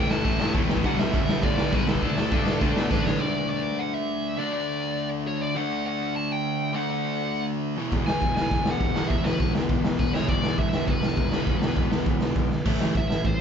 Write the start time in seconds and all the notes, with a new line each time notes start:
Already playing: D2 A2 E3 A3
0.11 A5, snare
0.24 A1 A2 E3 A3, kick, crash
0.39 G2, snare
0.54 E1 A2 E3 A3, kick, crash
0.69 snare
0.77 kick
0.84 B1 G2 D3 G3 F#5, kick, crash
0.99 B1 E5, snare
1.14 F#2 G2 D3 G3, kick, crash
1.28 B1, snare
1.43 G2 A2 D3 G3 D5, kick, crash
1.58 B1, snare
1.73 B1 G2 D3 G3 B4, kick, crash
1.87 B1 A4, snare
1.95 kick
2.02 D2 D3 A3 D4, kick, crash
2.17 D2, snare
2.32 G2 D3 A3 D4, kick, crash
2.46 snare
2.61 D2 D3 A3 D4, kick, crash
2.76 B2, snare
2.90 A1 D3 A3 D4 B4, kick, snare
3.06 C#5, snare
3.19 D3 A3 D4 D5
3.49 D5
3.79 F#5
3.94 E5
4.37 D3 A3 D4 D5
4.53 D5
5.27 C#5
5.42 D5
5.55 D3 A3 D4 F#5
5.87 F#5
6.16 A5
6.32 G5
6.73 D3 A3 D4 F#5
6.90 F#5
7.77 E2 B2 E3
7.92 E1, kick, crash
8.06 E1 G#5, snare
8.21 E1, kick, crash
8.35 E1 G#5, snare
8.51 E1, kick, crash
8.65 E1, snare
8.71 F#5
8.80 E1, kick, crash
8.95 E2 B2 E3, snare
9.08 E1 E5, kick, crash
9.24 E1 B4, snare
9.40 E1, kick, crash
9.54 E1, snare
9.69 E1, kick, crash
9.84 E1, snare
9.99 E1 B4, kick, crash
10.13 E2 B2 E3 C#5, snare
10.28 E1 D5, kick, crash
10.43 E1, snare
10.58 E1 E5, kick, crash
10.73 E1, snare
10.88 E1 B4, kick, crash
11.02 E1, snare
11.17 E1, kick, crash
11.32 E2 B2 E3, snare
11.47 E1, kick, crash
11.61 E1, snare
11.76 E1, kick, crash
11.92 E1, snare
12.06 E1, kick, crash
12.21 E1, snare
12.36 B1, kick, crash
12.51 snare
12.65 A1 A2 E3 A3, kick, crash
12.81 A1, snare
12.95 A1 A2 E3 E5, kick, crash
13.10 A1, snare
13.24 A1 A2 E3 C5, kick, crash